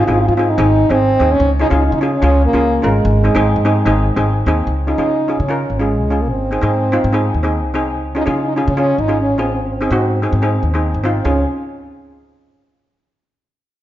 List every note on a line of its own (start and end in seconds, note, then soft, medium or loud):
0.06 0.24 G#1 medium
0.06 0.26 C4 medium
0.06 0.26 D#4 medium
0.06 0.12 F4 medium
0.06 0.26 G#4 medium
0.13 0.19 F4 loud
0.21 0.27 F4 medium
0.28 0.53 G#2 medium
0.28 0.34 F4 loud
0.36 0.50 C4 medium
0.36 0.51 D#4 medium
0.36 0.52 F4 medium
0.36 0.51 G#4 medium
0.50 0.92 D#4 loud
0.58 0.83 G#1 loud
0.58 0.77 C4 medium
0.58 0.77 D#4 medium
0.58 0.77 G#4 medium
0.90 1.14 G#1 medium
0.90 1.08 C4 medium
0.90 1.33 C4 loud
0.90 1.08 D#4 medium
0.90 1.09 G#4 medium
1.20 1.36 D#2 medium
1.20 1.40 C4 medium
1.20 1.41 D#4 medium
1.20 1.41 G#4 medium
1.32 1.52 C#4 loud
1.40 1.65 C#2 loud
1.60 1.66 C#4 medium
1.60 1.68 D#4 loud
1.60 1.67 F4 medium
1.60 1.67 G#4 medium
1.70 1.88 C#2 medium
1.70 1.89 C#4 medium
1.70 1.76 D#4 medium
1.70 1.89 F4 medium
1.70 1.90 G#4 medium
1.78 1.84 D#4 medium
1.86 1.92 D#4 medium
1.92 2.16 C#3 medium
1.92 1.99 D#4 medium
2.01 2.14 C#4 medium
2.01 2.07 D#4 medium
2.01 2.14 F4 medium
2.01 2.15 G#4 medium
2.15 2.23 C#4 medium
2.22 2.47 C#2 loud
2.22 2.40 C#4 medium
2.22 2.43 C#4 loud
2.22 2.41 F4 medium
2.22 2.41 G#4 medium
2.46 2.87 A#3 loud
2.53 2.78 C#2 medium
2.53 2.71 C#4 medium
2.53 2.72 F4 medium
2.53 2.72 G#4 medium
2.82 3.00 G#1 medium
2.82 4.27 G#3 medium
2.82 3.03 C#4 medium
2.82 3.04 F4 medium
2.82 3.04 A#4 medium
3.05 3.29 G#1 loud
3.24 3.30 C4 medium
3.24 3.31 D#4 medium
3.24 3.31 G#4 medium
3.35 3.51 G#1 medium
3.35 3.53 C4 loud
3.35 3.53 D#4 medium
3.35 3.54 G#4 loud
3.56 3.80 G#2 medium
3.65 3.78 C4 medium
3.65 3.78 D#4 medium
3.65 3.78 G#4 loud
3.85 4.11 G#1 loud
3.85 4.04 C4 medium
3.85 4.04 D#4 medium
3.85 4.05 G#4 loud
4.16 4.41 G#1 medium
4.16 4.35 C4 medium
4.16 4.35 D#4 medium
4.16 4.35 G#4 medium
4.46 4.63 D#2 medium
4.46 4.67 C4 medium
4.46 4.68 D#4 medium
4.46 4.68 G#4 loud
4.67 4.92 C#2 medium
4.87 4.94 C#4 medium
4.87 5.41 D#4 loud
4.87 4.94 F4 medium
4.87 4.94 G#4 medium
4.98 5.31 C#3 medium
4.98 5.17 C#4 medium
4.98 5.17 F4 medium
4.98 5.17 G#4 medium
5.28 5.41 C#4 medium
5.28 5.41 F4 medium
5.28 5.42 G#4 medium
5.40 5.64 C#3 medium
5.40 5.81 C#4 medium
5.49 5.67 C#4 medium
5.49 5.68 F4 medium
5.49 5.68 A#4 medium
5.70 6.01 G#1 medium
5.79 6.23 G#3 medium
5.79 5.98 C#4 medium
5.79 5.99 F4 medium
5.79 5.99 G#4 medium
6.01 6.31 C#2 medium
6.10 6.31 C#4 medium
6.10 6.31 F4 medium
6.10 6.32 G#4 medium
6.22 6.30 A#3 medium
6.30 6.56 G#1 medium
6.30 7.50 C4 medium
6.51 6.58 C4 medium
6.51 6.58 D#4 medium
6.51 6.59 G#4 medium
6.61 6.96 G#2 medium
6.61 6.80 C4 medium
6.61 6.81 D#4 medium
6.61 6.81 G#4 medium
6.92 7.05 C4 medium
6.92 7.06 D#4 medium
6.92 7.06 F4 medium
7.04 7.28 G#2 medium
7.12 7.32 C4 medium
7.12 7.32 D#4 medium
7.12 7.32 G#4 medium
7.34 7.65 D#2 medium
7.43 7.62 C4 medium
7.43 7.63 D#4 medium
7.43 7.63 G#4 medium
7.65 7.96 C2 medium
7.74 7.95 C4 medium
7.74 7.95 D#4 medium
7.74 7.96 G#4 medium
7.96 8.21 C#2 loud
8.15 8.22 C#4 medium
8.15 8.24 D#4 loud
8.15 8.22 F4 medium
8.15 8.23 G#4 medium
8.26 8.60 C#3 medium
8.26 8.45 C#4 medium
8.26 8.32 D#4 medium
8.26 8.45 F4 medium
8.26 8.45 G#4 medium
8.33 8.39 D#4 medium
8.42 8.47 D#4 medium
8.48 8.54 D#4 loud
8.56 8.70 C#4 medium
8.56 8.62 D#4 medium
8.56 8.70 F4 medium
8.56 8.70 G#4 medium
8.68 8.92 C#3 loud
8.68 8.74 C#4 medium
8.77 8.96 C#4 medium
8.77 9.01 C#4 loud
8.77 8.96 F4 medium
8.77 8.97 G#4 medium
8.98 9.29 G#1 medium
8.98 9.20 D#4 medium
9.08 9.27 C#4 medium
9.08 9.27 F4 medium
9.08 9.28 G#4 medium
9.21 9.39 C#4 medium
9.29 9.60 A1 medium
9.38 9.47 C4 medium
9.38 9.59 C#4 medium
9.38 9.60 F4 medium
9.38 9.60 G#4 medium
9.48 9.54 C4 medium
9.55 9.62 C4 medium
9.60 9.85 G#1 loud
9.60 9.69 C4 soft
9.69 9.76 C4 medium
9.77 9.83 C4 medium
9.77 9.87 C4 medium
9.81 9.91 C4 medium
9.81 9.88 D#4 medium
9.81 9.88 G#4 medium
9.91 10.24 G#2 loud
9.91 10.10 C4 medium
9.91 9.99 C4 medium
9.91 10.10 D#4 medium
9.91 10.10 F#4 loud
9.99 10.07 C4 medium
10.07 10.14 C4 medium
10.14 10.21 C4 medium
10.22 10.35 C4 medium
10.22 10.29 C4 soft
10.22 10.35 D#4 medium
10.22 10.35 G#4 medium
10.30 10.57 G#2 loud
10.30 10.36 C4 medium
10.37 10.43 C4 soft
10.42 10.61 C4 medium
10.42 10.51 C4 medium
10.42 10.61 D#4 medium
10.42 10.61 G#4 medium
10.52 10.58 C4 medium
10.59 10.65 C4 medium
10.63 10.96 D#2 medium
10.63 10.74 C4 medium
10.74 10.92 C4 medium
10.74 10.93 D#4 medium
10.74 10.93 G#4 medium
10.94 11.19 G#1 medium
11.04 11.24 C4 medium
11.04 11.25 D#4 medium
11.04 11.24 F4 medium
11.24 11.44 C#2 loud
11.24 11.43 C#4 medium
11.24 11.44 C#4 medium
11.24 11.44 F4 medium
11.24 11.44 G#4 medium